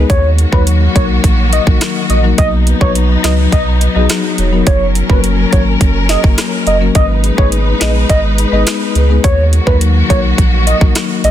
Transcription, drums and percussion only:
0.10 kick, closed hi-hat
0.38 closed hi-hat
0.53 kick
0.67 closed hi-hat
0.96 kick, closed hi-hat
1.24 kick, closed hi-hat
1.53 closed hi-hat
1.67 kick
1.81 cross-stick, snare, closed hi-hat
2.10 closed hi-hat
2.38 kick, closed hi-hat
2.67 closed hi-hat
2.81 kick
2.95 closed hi-hat
3.24 cross-stick, snare, closed hi-hat
3.52 kick, closed hi-hat
3.81 closed hi-hat
4.09 cross-stick, snare, closed hi-hat
4.38 closed hi-hat
4.67 kick, closed hi-hat
4.95 closed hi-hat
5.10 kick
5.24 closed hi-hat
5.53 kick, closed hi-hat
5.81 kick, closed hi-hat
6.09 snare, closed hi-hat
6.24 kick
6.38 cross-stick, snare, closed hi-hat
6.67 closed hi-hat
6.95 kick, closed hi-hat
7.24 closed hi-hat
7.38 kick
7.52 closed hi-hat
7.81 cross-stick, snare, closed hi-hat
8.10 kick, closed hi-hat
8.38 closed hi-hat
8.67 cross-stick, snare, closed hi-hat
8.95 closed hi-hat
9.24 kick, closed hi-hat
9.53 closed hi-hat
9.67 kick
9.81 closed hi-hat
10.10 kick, closed hi-hat
10.38 kick, closed hi-hat
10.67 closed hi-hat
10.81 kick
10.95 cross-stick, snare, closed hi-hat
11.24 closed hi-hat

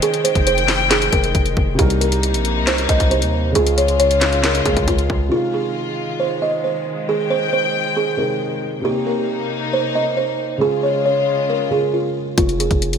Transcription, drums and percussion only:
0.02 closed hi-hat
0.14 closed hi-hat
0.25 closed hi-hat
0.35 kick, closed hi-hat
0.47 closed hi-hat
0.58 closed hi-hat
0.68 snare, clap, open hi-hat
0.91 snare, clap, closed hi-hat
1.02 closed hi-hat
1.13 kick, closed hi-hat
1.24 closed hi-hat
1.35 kick, closed hi-hat
1.46 closed hi-hat
1.57 kick
1.79 kick, closed hi-hat
1.90 closed hi-hat
2.01 closed hi-hat
2.12 closed hi-hat
2.23 closed hi-hat
2.34 closed hi-hat
2.45 closed hi-hat
2.67 snare, clap, closed hi-hat
2.78 closed hi-hat
2.89 kick, closed hi-hat
3.00 kick, closed hi-hat
3.11 closed hi-hat
3.22 closed hi-hat
3.55 closed hi-hat
3.67 closed hi-hat
3.78 closed hi-hat
3.88 closed hi-hat
4.00 closed hi-hat
4.11 closed hi-hat
4.21 snare, clap, closed hi-hat, open hi-hat
4.33 closed hi-hat
4.44 snare, clap, closed hi-hat
4.55 closed hi-hat
4.66 kick, closed hi-hat
4.77 kick, closed hi-hat
4.88 kick, closed hi-hat
4.99 closed hi-hat
5.10 kick
12.38 kick, closed hi-hat
12.49 closed hi-hat
12.60 closed hi-hat
12.71 kick, closed hi-hat
12.82 closed hi-hat
12.93 closed hi-hat

